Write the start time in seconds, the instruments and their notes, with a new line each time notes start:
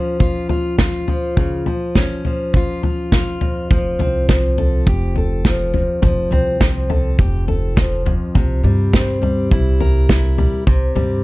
Already playing: steel-string acoustic guitar F3 C#4 F4
0.20 steel-string acoustic guitar F4, kick, floor tom
0.49 steel-string acoustic guitar F4, floor tom
0.78 steel-string acoustic guitar F4, kick, snare, floor tom
1.08 steel-string acoustic guitar F3, floor tom
1.37 steel-string acoustic guitar C#3, kick, floor tom
1.66 steel-string acoustic guitar F3, floor tom
1.95 steel-string acoustic guitar C#4, kick, snare, floor tom
2.25 steel-string acoustic guitar F3, floor tom
2.54 steel-string acoustic guitar F4, kick, floor tom
2.83 steel-string acoustic guitar F4, floor tom
3.12 steel-string acoustic guitar F4, kick, snare, floor tom
3.41 steel-string acoustic guitar F2, floor tom
3.71 upright bass F1, steel-string acoustic guitar F3, kick, floor tom
3.99 upright bass C2, steel-string acoustic guitar C4, floor tom
4.29 steel-string acoustic guitar F3, kick, snare, floor tom
4.58 steel-string acoustic guitar A4, floor tom
4.87 upright bass F1, steel-string acoustic guitar G4, kick, floor tom
5.16 steel-string acoustic guitar A4, floor tom
5.45 steel-string acoustic guitar F3, kick, snare, floor tom
5.74 steel-string acoustic guitar F2, floor tom
6.02 upright bass F1, steel-string acoustic guitar F3, kick, floor tom
6.31 upright bass C2, steel-string acoustic guitar C4, floor tom
6.61 steel-string acoustic guitar F3, kick, snare, floor tom
6.90 steel-string acoustic guitar A4, floor tom
7.19 upright bass F1, steel-string acoustic guitar G4, kick, floor tom
7.48 steel-string acoustic guitar A4, floor tom
7.76 steel-string acoustic guitar F3, kick, snare, floor tom
8.06 steel-string acoustic guitar F2, floor tom
8.35 upright bass C2, steel-string acoustic guitar C3, kick, floor tom
8.64 upright bass G2, steel-string acoustic guitar G3, floor tom
8.94 steel-string acoustic guitar C4, kick, snare, floor tom
9.22 steel-string acoustic guitar G3, floor tom
9.51 upright bass C2, steel-string acoustic guitar E4, kick, floor tom
9.81 steel-string acoustic guitar A#4, floor tom
10.09 steel-string acoustic guitar E4, kick, snare, floor tom
10.38 steel-string acoustic guitar G3, floor tom
10.67 upright bass C2, steel-string acoustic guitar C3, kick, floor tom
10.95 upright bass G2, steel-string acoustic guitar G3, floor tom